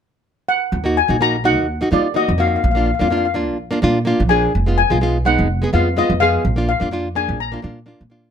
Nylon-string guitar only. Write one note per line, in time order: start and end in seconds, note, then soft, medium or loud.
0.84 0.98 A#3 medium
0.84 0.98 D#4 medium
0.84 0.99 F#4 medium
1.08 1.15 A#3 medium
1.08 1.16 D#4 medium
1.08 1.16 F#4 medium
1.21 1.35 A#3 medium
1.21 1.36 D#4 medium
1.21 1.36 F#4 medium
1.44 1.66 A#3 medium
1.44 1.66 D#4 medium
1.44 1.66 F#4 medium
1.81 1.87 A#3 medium
1.81 1.88 D#4 medium
1.81 1.88 F#4 medium
1.91 2.06 A#3 medium
1.91 2.07 D#4 medium
1.91 2.07 F4 medium
2.14 2.30 A#3 medium
2.14 2.30 D#4 medium
2.14 2.31 F#4 medium
2.38 2.60 A#3 medium
2.38 2.61 D#4 medium
2.38 2.61 F#4 medium
2.75 2.89 A#3 medium
2.75 2.90 D4 medium
2.75 2.90 F4 medium
2.99 3.06 A#3 medium
2.99 3.07 D4 medium
2.99 3.07 F4 medium
3.10 3.26 A#3 medium
3.10 3.26 D4 medium
3.10 3.27 F4 medium
3.34 3.56 A#3 medium
3.34 3.57 D4 medium
3.34 3.57 F4 medium
3.71 3.78 A#3 medium
3.71 3.78 D4 medium
3.71 3.79 F4 medium
3.82 3.97 A#3 medium
3.82 3.98 D4 medium
3.82 3.98 F4 medium
4.05 4.21 A#3 medium
4.05 4.21 D4 medium
4.05 4.22 F4 medium
4.29 4.51 A#3 medium
4.29 4.52 D4 medium
4.29 4.52 G#4 medium
4.66 4.80 G#3 medium
4.66 4.81 B3 medium
4.66 4.81 F4 medium
4.90 4.97 G#3 medium
4.90 4.97 B3 medium
4.90 4.98 F4 medium
5.01 5.16 G#3 medium
5.01 5.17 B3 medium
5.01 5.17 F4 medium
5.25 5.47 G#3 medium
5.25 5.47 B3 medium
5.25 5.48 D#4 medium
5.62 5.69 G#3 medium
5.62 5.69 B3 medium
5.62 5.70 G#4 medium
5.73 5.88 G#3 medium
5.73 5.88 B3 medium
5.73 5.89 F4 medium
5.97 6.12 G#3 medium
5.97 6.12 B3 medium
5.97 6.13 F4 medium
6.20 6.42 G#3 medium
6.20 6.42 B3 medium
6.20 6.43 G#4 medium
6.56 6.70 A#3 medium
6.56 6.71 D4 medium
6.56 6.71 F4 medium
6.80 6.87 A#3 medium
6.80 6.88 D4 medium
6.80 6.88 F4 medium
6.91 7.07 A#3 medium
6.91 7.07 D4 medium
6.91 7.08 F4 medium
7.15 7.37 A#3 medium
7.15 7.38 D4 medium
7.15 7.38 G#4 medium
7.52 7.59 A#3 medium
7.52 7.59 D4 medium
7.52 7.60 F4 medium
7.62 7.78 A#3 medium
7.62 7.79 D4 medium
7.62 7.79 F4 medium
7.86 8.02 A#3 medium
7.86 8.02 D4 medium
7.86 8.03 F4 medium
8.10 8.31 A#3 medium
8.10 8.31 D4 medium
8.10 8.31 F4 medium